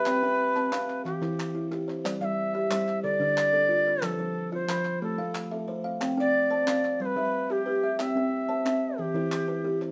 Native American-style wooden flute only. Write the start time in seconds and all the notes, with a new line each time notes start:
Already playing: B4
1.05 G4
2.21 E5 F5
3.03 D5
4.04 A4
4.54 C5
5.04 A4
6.20 D5
7.01 C5
7.06 B4
7.52 G4
8.01 E5
8.99 G4